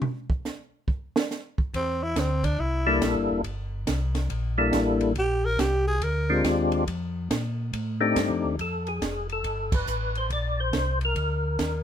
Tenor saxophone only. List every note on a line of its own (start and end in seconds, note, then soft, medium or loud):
1.76 2.05 C4 medium
2.03 2.21 E4 medium
2.20 2.46 C4 medium
2.45 2.61 D4 medium
2.60 3.02 E4 medium
5.19 5.47 G4 medium
5.45 5.61 A#4 loud
5.60 5.87 G4 medium
5.88 6.05 G#4 medium
6.04 6.45 A#4 medium